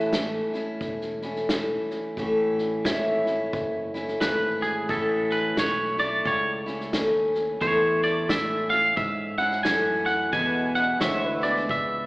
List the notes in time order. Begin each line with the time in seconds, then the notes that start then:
Already playing: A1 A2 E3 A3 C#4 E4 E5 A5
0.12 E3 A3 C#4 E4, snare, hi-hat pedal
0.54 A3 C#4 E4, snare
0.81 E1, kick, snare
1.01 snare
1.22 A3 C#4 E4, snare
1.36 snare
1.49 E3 A3 C#4 E4, snare, hi-hat pedal
1.90 snare
2.17 A1 A2 E3 A3 C#4 E4, kick, snare
2.59 snare
2.85 G#1 E3 A3 C#4 E4 C#5 E5, kick, snare, hi-hat pedal
3.26 A3 C#4 E4, snare
3.53 F#1, kick, snare
3.94 A3 C#4 E4, snare
4.08 snare
4.20 G#1 E3 A3 C#4 E4 B4, kick, snare, hi-hat pedal
4.62 G#4, snare
4.89 A1 A2 E3 A3 C#4 E4 A4, kick, snare
5.30 B4, snare
5.57 B1 E3 A3 C#4 E4 C#5, kick, snare, hi-hat pedal
5.98 A3 E4 D5, snare
6.25 C#2 C#5, kick, snare
6.66 A3 C#4 E4, snare
6.80 snare
6.93 D#2 A3 C#4 E4, kick, snare, hi-hat pedal
7.35 snare
7.61 E2 A2 E3 A3 E4 C#5, kick, snare
8.03 D5, snare
8.28 A2 E3 A3 C#4 E4 E5, kick, snare, hi-hat pedal
8.70 C#4 F5, snare
8.97 G#2 E5, kick, snare
9.38 C#4 E4 F#5, snare
9.51 snare
9.63 F#2 E3 A3 C#4 G#5, kick, snare, hi-hat pedal
9.67 E4
10.06 F#5, snare
10.33 E2 B2 E3 G#3 B3 E4 G#5, kick, snare
10.74 F#5, snare
11.00 D2 E3 G#3 B3 E4 C#5 E5, kick, snare, hi-hat pedal
11.26 B4
11.41 E3 G#3 B3 E4 D5, snare
11.56 snare
11.69 C#2 E5, kick, snare